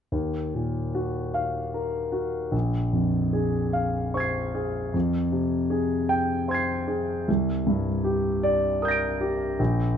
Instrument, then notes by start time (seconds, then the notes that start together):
grand piano
0.12 D#2
0.54 A#2
0.95 F#4
1.34 F5
1.74 A#4
2.12 F#4
2.51 A#1
2.93 F2
3.33 G#4
3.73 F5
4.14 C5 C#6 G#6
4.20 C7
4.54 G#4
4.94 F2
5.32 C3
5.70 G#4
6.09 G5
6.48 C5 C6 G#6
6.54 C7
6.88 G#4
7.28 C2
7.67 G2
8.04 G4
8.43 D5
8.82 A#4 D#6 G6
8.88 A#6 D7
9.21 G4
9.59 A#1